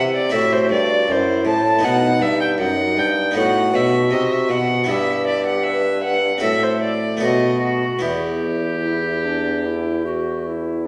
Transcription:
Already playing: harpsichord C3 B3 E4, bassoon C3
0.15 violin D5
0.29 bassoon A2, harpsichord A2 C4 E4, violin E5
0.34 recorder F#4
0.53 violin C5
0.69 harpsichord G2, bassoon G2, violin D5
1.08 harpsichord F#2, bassoon F#2, recorder E4, violin C5
1.45 harpsichord A2, bassoon A2, violin A5
1.78 harpsichord B2 B3 D#4
1.83 bassoon B2, recorder D#4, violin F#5
2.20 harpsichord G2, bassoon G2, violin E5
2.41 violin G5
2.58 harpsichord F#2, bassoon F#2, recorder D#4, violin F#5
2.97 harpsichord G2, bassoon G2, violin G5
3.31 harpsichord A2 B3 D#4
3.36 bassoon A2, recorder F#4, violin F#5
3.74 bassoon B2, harpsichord B2, violin E5
4.11 harpsichord C3, bassoon C3, violin D#5
4.32 violin E5
4.49 harpsichord B2, bassoon B2, violin F#5
4.84 harpsichord G2 B3 E4
4.88 bassoon G2, recorder G4, violin E5
5.27 violin D5
5.46 violin F#5
5.63 recorder B4, violin E5
6.04 violin F#5
6.38 harpsichord A2 C4 F#4, bassoon A2, violin E5
6.44 recorder A4
6.63 violin C5
6.82 violin D5
7.17 harpsichord A3 B3 F#4
7.22 harpsichord B2, bassoon B2, recorder F#4, violin D#5
7.61 violin F#4
7.99 bassoon E2, harpsichord E2 B3 E4, violin G4
8.03 recorder E4
8.84 recorder E4
9.25 recorder D4
9.66 recorder E4
10.06 recorder F#4
10.47 recorder E4

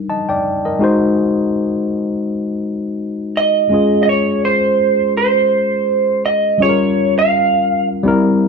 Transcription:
Already playing: tine electric piano G3 D4 D#4
0.10 tine electric piano D#5 A5
0.29 tine electric piano D5 G5
0.65 tine electric piano A#4 D#5
0.79 tine electric piano G#3 D#4 F#4
0.84 tine electric piano C5
3.37 clean electric guitar D#5
3.69 tine electric piano G#3 C#4 F4
3.74 tine electric piano G#4
4.03 clean electric guitar D#5
4.09 clean electric guitar C#5
4.45 clean electric guitar C5
5.17 clean electric guitar C5
6.26 clean electric guitar D#5
6.58 tine electric piano G3 C#4 F4, clean electric guitar C#5
6.63 tine electric piano G#4
6.69 tine electric piano A#4
7.19 clean electric guitar F5
8.03 tine electric piano G3 C4 E4
8.08 tine electric piano A#4

